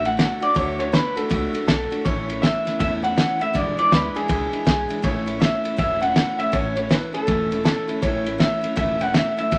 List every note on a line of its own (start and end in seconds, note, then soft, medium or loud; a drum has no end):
0.00 0.24 A1 medium
0.00 0.18 F#4 medium
0.05 0.17 A3 soft
0.05 0.18 D4 medium
0.05 0.42 F#5 loud
0.05 ride medium
0.17 0.42 D3 medium
0.17 0.42 A3 medium
0.17 0.41 D4 medium
0.17 0.39 F#4 medium
0.17 snare loud
0.17 ride medium
0.40 0.54 A3 soft
0.40 0.55 D4 medium
0.40 0.55 F#4 medium
0.40 0.55 D5 loud
0.40 muted upright bass stroke medium
0.40 ride medium
0.54 0.99 D2 medium
0.54 0.79 D3 medium
0.54 0.79 A3 medium
0.54 0.79 D4 medium
0.54 0.77 F#4 medium
0.54 0.79 C#5 loud
0.54 kick loud
0.54 ride medium
0.78 0.92 A3 soft
0.78 0.93 D4 soft
0.78 0.93 F#4 medium
0.78 0.93 C#5 loud
0.78 ride medium
0.92 1.17 D3 medium
0.92 1.17 A3 medium
0.92 1.16 D4 medium
0.92 1.14 F#4 medium
0.92 1.17 B4 loud
0.92 snare loud
0.92 ride medium
1.15 1.28 A3 soft
1.15 1.29 D4 medium
1.15 1.30 F#4 medium
1.15 1.66 A4 medium
1.15 muted upright bass stroke medium
1.15 ride medium
1.29 1.51 C#2 medium
1.29 1.54 D3 medium
1.29 1.54 A3 medium
1.29 1.53 D4 medium
1.29 1.52 F#4 medium
1.29 kick loud
1.29 ride loud
1.53 1.67 A3 soft
1.53 1.67 D4 soft
1.53 1.67 F#4 soft
1.53 muted upright bass stroke medium
1.53 ride medium
1.67 1.88 B1 medium
1.67 1.91 D3 medium
1.67 1.92 A3 medium
1.67 1.91 D4 medium
1.67 2.03 A4 medium
1.67 snare loud
1.67 ride medium
1.90 2.04 A3 soft
1.90 2.06 D4 medium
1.90 2.05 F#4 medium
1.90 ride medium
2.05 2.48 A1 medium
2.05 2.29 A2 medium
2.05 2.29 E3 medium
2.05 2.29 A3 medium
2.05 2.29 C#4 medium
2.05 2.27 E4 medium
2.05 2.42 C#5 medium
2.05 kick loud
2.05 ride medium
2.28 2.42 A3 soft
2.28 2.43 C#4 medium
2.28 2.42 E4 medium
2.28 ride medium
2.42 2.66 E3 medium
2.42 2.67 A3 medium
2.42 2.66 C#4 medium
2.42 2.64 E4 medium
2.42 2.78 E5 loud
2.42 snare loud
2.42 ride medium
2.65 2.79 A3 soft
2.65 2.80 C#4 medium
2.65 2.80 E4 medium
2.65 muted upright bass stroke medium
2.65 snare soft
2.65 ride medium
2.79 3.23 E2 medium
2.79 3.03 A2 medium
2.79 3.04 E3 medium
2.79 3.04 A3 medium
2.79 3.03 C#4 medium
2.79 3.01 E4 loud
2.79 2.86 E5 loud
2.79 kick loud
2.79 ride medium
3.02 3.16 A3 soft
3.02 3.17 C#4 medium
3.02 3.17 E4 medium
3.02 3.38 F#5 loud
3.02 ride medium
3.16 3.40 E3 medium
3.16 3.41 A3 medium
3.16 3.40 C#4 medium
3.16 3.38 E4 medium
3.16 snare loud
3.16 ride medium
3.39 3.54 A3 soft
3.39 3.55 C#4 medium
3.39 3.54 E4 medium
3.39 3.56 E5 loud
3.39 muted upright bass stroke medium
3.39 ride medium
3.53 3.71 E1 medium
3.53 3.78 E2 medium
3.53 3.78 B2 medium
3.53 3.78 E3 medium
3.53 3.78 G#3 medium
3.53 3.77 D4 medium
3.53 3.76 E4 medium
3.53 3.78 D5 medium
3.53 kick loud
3.53 ride medium
3.77 3.90 E3 medium
3.77 3.91 G#3 soft
3.77 3.92 D4 soft
3.77 3.91 E4 medium
3.77 3.93 D5 loud
3.77 muted upright bass stroke medium
3.77 ride medium
3.91 4.12 D2 medium
3.91 4.15 E3 medium
3.91 4.15 G#3 medium
3.91 4.15 D4 medium
3.91 4.13 E4 medium
3.91 4.17 B4 medium
3.91 snare loud
3.91 ride medium
4.15 4.28 E3 soft
4.15 4.28 G#3 soft
4.15 4.29 D4 soft
4.15 4.29 E4 medium
4.15 4.63 G#4 medium
4.15 muted upright bass stroke medium
4.15 ride medium
4.28 4.50 C#2 medium
4.28 4.52 E2 medium
4.28 4.53 B2 medium
4.28 4.53 E3 medium
4.28 4.52 G#3 medium
4.28 4.52 D4 medium
4.28 4.51 E4 medium
4.28 kick loud
4.28 ride medium
4.52 4.64 E3 soft
4.52 4.65 G#3 soft
4.52 4.65 D4 soft
4.52 4.66 E4 medium
4.52 muted upright bass stroke medium
4.52 ride medium
4.65 4.87 B1 medium
4.65 4.89 E3 medium
4.65 4.89 G#3 medium
4.65 4.89 D4 medium
4.65 4.88 E4 medium
4.65 5.05 G#4 medium
4.65 kick medium
4.65 snare loud
4.65 ride medium
4.89 5.02 E3 soft
4.89 5.03 G#3 medium
4.89 5.03 D4 medium
4.89 5.03 E4 medium
4.89 muted upright bass stroke medium
4.89 ride medium
5.02 5.47 A1 medium
5.02 5.27 A2 medium
5.02 5.27 E3 medium
5.02 5.27 A3 medium
5.02 5.27 C#4 medium
5.02 5.25 E4 medium
5.02 5.39 C#5 medium
5.02 kick loud
5.02 ride medium
5.26 5.40 A3 soft
5.26 5.41 C#4 medium
5.26 5.41 E4 medium
5.26 ride medium
5.40 5.64 E3 medium
5.40 5.65 A3 medium
5.40 5.64 C#4 medium
5.40 5.63 E4 medium
5.40 5.76 E5 loud
5.40 snare loud
5.40 ride medium
5.64 5.77 A3 soft
5.64 5.77 C#4 soft
5.64 5.77 E4 medium
5.64 muted upright bass stroke medium
5.64 ride medium
5.77 6.21 E1 medium
5.77 6.01 A2 medium
5.77 6.02 E3 medium
5.77 6.02 A3 medium
5.77 6.01 C#4 medium
5.77 5.99 E4 medium
5.77 6.01 E5 loud
5.77 kick loud
5.77 ride medium
6.00 6.14 A3 soft
6.00 6.15 C#4 soft
6.00 6.15 E4 medium
6.00 6.37 F#5 loud
6.00 ride medium
6.14 6.39 E3 medium
6.14 6.39 A3 medium
6.14 6.38 C#4 medium
6.14 6.37 E4 medium
6.14 snare loud
6.14 ride medium
6.38 6.52 A3 soft
6.38 6.52 C#4 medium
6.38 6.53 E4 medium
6.38 6.53 E5 loud
6.38 muted upright bass stroke medium
6.38 ride medium
6.52 6.96 A1 medium
6.52 6.76 A2 medium
6.52 6.76 E3 medium
6.52 6.77 A3 medium
6.52 6.76 C#4 medium
6.52 6.75 E4 medium
6.52 6.75 C#5 loud
6.52 kick loud
6.52 ride medium
6.76 6.89 A3 soft
6.76 6.90 C#4 medium
6.76 6.90 E4 medium
6.76 6.90 C#5 medium
6.76 ride medium
6.89 7.14 E3 medium
6.89 7.14 A3 medium
6.89 7.13 C#4 medium
6.89 7.12 E4 medium
6.89 7.14 B4 medium
6.89 snare loud
6.89 ride medium
7.13 7.27 A3 soft
7.13 7.27 C#4 medium
7.13 7.27 E4 soft
7.13 7.64 A4 medium
7.13 muted upright bass stroke medium
7.13 ride medium
7.27 7.71 E1 medium
7.27 7.51 A2 medium
7.27 7.51 E3 medium
7.27 7.51 A3 medium
7.27 7.51 C#4 medium
7.27 7.50 E4 medium
7.27 kick loud
7.27 ride medium
7.51 7.64 A3 medium
7.51 7.65 C#4 soft
7.51 7.65 E4 medium
7.51 ride medium
7.64 7.88 E3 medium
7.64 7.89 A3 medium
7.64 7.88 C#4 medium
7.64 7.86 E4 medium
7.64 8.00 A4 medium
7.64 snare loud
7.64 ride medium
7.88 8.02 A3 soft
7.88 8.02 C#4 medium
7.88 8.02 E4 medium
7.88 muted upright bass stroke medium
7.88 ride medium
8.02 8.45 A1 medium
8.02 8.26 A2 medium
8.02 8.26 E3 medium
8.02 8.26 A3 medium
8.02 8.25 C#4 loud
8.02 8.23 E4 medium
8.02 8.41 C#5 medium
8.02 kick loud
8.02 ride medium
8.25 8.38 A3 soft
8.25 8.39 C#4 medium
8.25 8.39 E4 medium
8.25 ride medium
8.38 8.63 E3 medium
8.38 8.63 A3 medium
8.38 8.62 C#4 medium
8.38 8.60 E4 medium
8.38 8.75 E5 medium
8.38 snare loud
8.38 ride medium
8.61 8.75 A3 soft
8.61 8.76 C#4 soft
8.61 8.76 E4 medium
8.61 muted upright bass stroke medium
8.61 ride medium
8.76 9.20 E1 medium
8.76 9.00 A2 medium
8.76 9.00 E3 medium
8.76 9.01 A3 medium
8.76 9.00 C#4 medium
8.76 8.98 E4 medium
8.76 9.01 E5 loud
8.76 kick loud
8.76 ride medium
8.99 9.14 A3 soft
8.99 9.14 C#4 medium
8.99 9.14 E4 medium
8.99 9.14 F#5 medium
8.99 ride medium
9.14 9.38 E3 medium
9.14 9.38 A3 medium
9.14 9.38 C#4 medium
9.14 9.36 E4 medium
9.14 9.37 E5 loud
9.14 snare loud
9.14 ride medium
9.37 9.52 A3 soft
9.37 9.52 C#4 medium
9.37 9.52 E4 medium
9.37 9.58 E5 medium
9.37 muted upright bass stroke medium
9.37 ride medium
9.51 9.58 E1 medium
9.51 9.58 E2 medium
9.51 9.58 B2 medium
9.51 9.58 E3 medium
9.51 9.58 G#3 medium
9.51 9.58 D4 medium
9.51 9.58 E4 medium
9.51 kick loud
9.51 ride medium